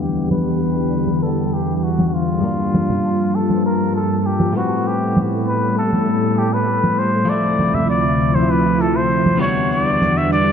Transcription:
Already playing: E2 D3 G3 B3 D4 G4 F#5
0.01 G4
0.31 B4, high conga, shaker
1.07 high conga
1.23 A4, shaker
1.54 G4, shaker
1.77 G4
1.83 F#4, shaker
1.99 high conga
2.07 F#4
2.14 F4, shaker
2.40 G2 F3 G3 A#3 A5
2.45 D4 F4
2.74 high conga, shaker
2.89 low conga
3.05 shaker
3.35 A4, shaker
3.50 high conga, shaker
3.66 A#4, shaker
3.96 A4, shaker
4.11 shaker
4.19 A4
4.26 G4, shaker
4.40 high conga
4.53 A2 G3 B3 A4
4.57 C4 E4 F#4, shaker
4.72 shaker
4.87 G4, shaker
5.03 shaker
5.17 high conga, shaker
5.33 shaker
5.47 B4, shaker
5.78 A4, shaker
5.93 high conga, shaker
6.09 shaker
6.38 G4, shaker
6.53 B4, shaker
6.69 shaker
6.84 high conga
6.99 C5, shaker
7.15 shaker
7.25 D2 F3 A3
7.29 C3 F3 C4 E4 D5, shaker
7.45 shaker
7.59 high conga, shaker
7.74 E5, low conga, shaker
7.90 D5, shaker
8.20 shaker
8.35 C5, high conga, shaker
8.51 B4, shaker
8.81 A4, shaker
8.96 C5, shaker
9.11 shaker
9.26 high conga
9.37 E2 G3 B3
9.41 E2 D3 G3 D4 F#4 C#5, shaker
9.57 shaker
9.72 D5, shaker
9.87 shaker
10.02 high conga, shaker
10.17 E5, shaker
10.33 D5, shaker

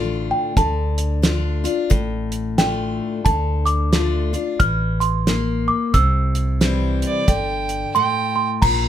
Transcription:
Already playing: A1 A2 D3 A3 D4 F4 A5
0.31 G5
0.57 D2 D3 A5, kick, closed hi-hat
0.98 closed hi-hat
1.22 D3 A3 D4 F4, snare, closed hi-hat
1.64 D4 F4, closed hi-hat
1.90 A1 A2, kick, closed hi-hat
2.32 closed hi-hat
2.58 D3 A3 D4 F4 G5, snare, closed hi-hat
3.25 D2 D3 A5, kick, closed hi-hat
3.66 D6, closed hi-hat
3.92 D3 A3 D4 F4, snare, closed hi-hat
4.33 D4 F4, closed hi-hat
4.60 A1 E3 F6, kick, closed hi-hat
5.00 C6, closed hi-hat
5.27 A#3, snare, closed hi-hat
5.68 D6
5.94 C2 C3 E6, kick, closed hi-hat
6.35 closed hi-hat
6.61 E3 G3 C4 E4, snare, closed hi-hat
7.02 closed hi-hat
7.07 D5
7.28 G1 D3 G5, kick, closed hi-hat
7.69 closed hi-hat
7.95 A2 G5 C6
8.36 C6
8.62 A#1 A#2 A#5, kick, crash

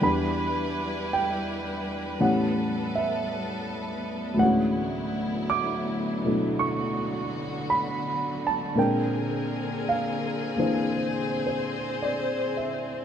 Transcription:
Already playing: G3 D4 B4
0.01 E2 E3 G3 D4 E4 G4 B5
1.13 G5
2.19 A2 E3 B3 C#4 G4 A4 F#5
2.96 E5
4.34 D2 A2 E3
4.39 D3 F#3 G#3 C#4 E4 F#5
4.45 F#4
5.50 D6
6.24 B2 F#3 A3 D4 E4
6.59 F#4 C#6
7.70 B5
8.47 A5
8.75 A#2 G#3 C4 D4 G#4 A#4 G5
9.89 F5
10.56 E3 A#3 D4 C5
10.96 C5
11.47 C5
12.02 D5
12.57 E5

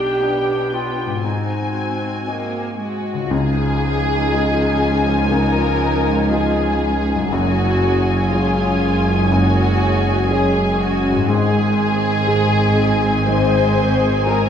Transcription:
Already playing: B1 B2 D4 G4 D5 G5
0.21 B3 D4 G4 D5
0.73 F4
1.06 G#2
1.10 D#4
1.15 F#4
1.19 C5
1.24 G#2 C4 D#4 F#4 G#5
2.27 A#3 C4 F#4 D#5
2.80 G#3 F#4
3.14 C#3
3.18 D#4
3.22 F4
3.27 G#4
3.31 C#2 C#3 F3 D#4 F4 G#4 G#5
4.32 G#3 F4 D#5
5.31 C#2 C#3 A#4
6.31 G#3 F4 G#4 D#5
7.14 F#2
7.19 C#4
7.24 F#3
7.28 G#4
7.32 F#1 F#2 G#3 C#4 F#4 G#4 G#5
8.32 G#3 F4 G#4 C#5
9.32 F#1 F#2 F#4
10.31 G#3 G#4 C#5
10.81 F#4
11.11 G#2
11.16 C4
11.20 D#4
11.24 G#3 G#4
11.29 G#1 G#2 C4 G#4 G#5
12.27 G#3 G#4 C5
13.27 G#1 G#2 C5
14.26 G#3 G#4 A#4 C5

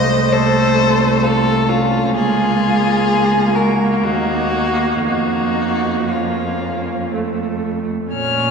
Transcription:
Already playing: C2 A3 C5 D#5
0.33 A4 C5
1.24 F4 A4
1.68 C#4 F4
2.14 C#2 A#3 F4 G#4
3.55 F#4 A#4
4.03 D#2 D#4 F#4
5.05 F2 D#4 F#4
6.12 C#4 F4
7.14 A3
8.12 A#2 C#4 C#5 F6

